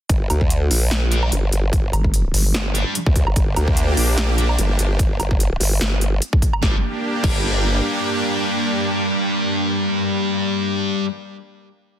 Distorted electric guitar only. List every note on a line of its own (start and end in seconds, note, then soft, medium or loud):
1.11 1.30 G3 medium
1.11 1.30 D4 medium
1.11 1.30 G4 medium
2.75 2.93 G3 medium
2.75 2.93 D4 medium
2.75 2.93 G4 medium
4.38 4.56 G3 medium
4.38 4.56 D4 medium
4.38 4.56 G4 medium
6.62 6.75 G3 medium
6.62 6.75 D4 medium
6.62 6.75 G4 medium
7.24 11.05 G3 medium
7.24 11.05 D4 medium
7.24 11.05 G4 medium